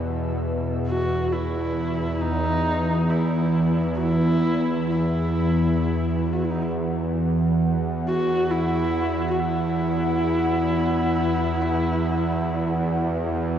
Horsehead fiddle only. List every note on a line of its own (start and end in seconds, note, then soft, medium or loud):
0.87 1.34 F#4 medium
1.32 2.23 E4 medium
2.22 3.11 D#4 loud
3.10 3.94 E4 medium
3.96 4.89 E4 loud
3.96 4.00 F#4 medium
4.90 6.34 E4 medium
6.32 6.45 F#4 medium
6.44 6.52 E4 medium
6.50 6.63 D#4 medium
6.62 6.70 E4 medium
8.08 8.52 F#4 loud
8.51 9.30 E4 loud
9.31 9.41 F#4 medium
9.40 13.59 E4 loud